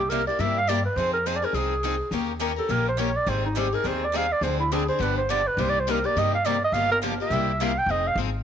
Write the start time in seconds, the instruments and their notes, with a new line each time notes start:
Already playing: upright bass C2
0.00 clarinet G4
0.09 steel-string acoustic guitar C3 G3 A#3 E4 G4, clarinet A#4
0.27 steel-string acoustic guitar A#3 E4 G4, clarinet D5
0.39 upright bass G2, steel-string acoustic guitar C3 G3 A#3 E4 G4, clarinet E5
0.58 clarinet F5
0.67 steel-string acoustic guitar C3 G3 A#3 E4 G4, clarinet D5
0.85 clarinet B4
0.96 upright bass F2, steel-string acoustic guitar F3 C4 D#4 G#4, clarinet C5
1.13 clarinet A#4
1.26 steel-string acoustic guitar F3 C4 D#4 G#4, clarinet C5
1.36 clarinet D5
1.42 steel-string acoustic guitar C4 D#4 G#4, clarinet A#4
1.53 upright bass C2, steel-string acoustic guitar F3 C4 D#4 G#4, clarinet G#4
1.83 steel-string acoustic guitar F3 C4 D#4 G#4
2.11 upright bass D#2, steel-string acoustic guitar D#3 A#3 C#4 G4 A#4
2.40 steel-string acoustic guitar D#3 A#3 C#4 G4 A#4
2.56 steel-string acoustic guitar C#4 G4 A#4, clarinet A4
2.69 upright bass A#1, steel-string acoustic guitar D#3 A#3 C#4 G4 A#4, clarinet A#4
2.89 clarinet C5
2.98 steel-string acoustic guitar D#3 A#3 C#4 G4 A#4, clarinet C#5
3.17 clarinet D5
3.26 upright bass G#1, steel-string acoustic guitar D#3 G3 C4 D#4 G#4, clarinet C5
3.45 clarinet D#4
3.56 steel-string acoustic guitar D#3 G3 C4 D#4 G#4, clarinet G4
3.73 steel-string acoustic guitar C4 D#4 G#4, clarinet A#4
3.84 upright bass D#2, steel-string acoustic guitar D#3 G3 C4 D#4 G#4, clarinet C5
4.04 clarinet D5
4.14 steel-string acoustic guitar D#3 G3 C4 D#4 G#4, clarinet F5
4.32 clarinet D5
4.41 upright bass D2, steel-string acoustic guitar D3 F3 C4 D4 G#4, clarinet C5
4.60 clarinet E4
4.72 steel-string acoustic guitar D3 F3 C4 D4 G#4, clarinet G#4
4.88 steel-string acoustic guitar C4 D4 G#4, clarinet C5
4.99 upright bass G1, steel-string acoustic guitar D3 F3 B3 D4 G4, clarinet B4
5.17 clarinet C5
5.29 steel-string acoustic guitar D3 F3 B3 D4 G4, clarinet D5
5.47 clarinet B4
5.57 upright bass C2, steel-string acoustic guitar C3 G3 A#3 D#4 G4, clarinet C5
5.69 clarinet D5
5.80 clarinet C5
5.87 steel-string acoustic guitar C3 G3 A#3 D#4 G4, clarinet A#4
6.04 steel-string acoustic guitar A#3 D#4 G4, clarinet D5
6.16 upright bass G2, steel-string acoustic guitar C3 G3 A#3 D#4 G4, clarinet D#5
6.34 clarinet F5
6.45 steel-string acoustic guitar C3 G3 A#3 D#4 G4, clarinet D5
6.64 clarinet D#5
6.72 upright bass G1, steel-string acoustic guitar C#3 F3 A#3 F4 G4, clarinet F5
6.92 clarinet A#4
7.02 steel-string acoustic guitar C#3 F3 A#3 F4 G4
7.20 steel-string acoustic guitar A#3 F4 G4, clarinet E5
7.30 upright bass C2, steel-string acoustic guitar C3 G3 A#3 E4 G4
7.61 steel-string acoustic guitar C3 G3 A#3 E4 G4, clarinet F5
7.78 clarinet G5
7.86 upright bass F1, steel-string acoustic guitar F3 C4 D#4 G#4
7.91 clarinet D#5
8.07 clarinet F5
8.15 upright bass G#1, steel-string acoustic guitar F3 C4 D#4
8.20 steel-string acoustic guitar G#4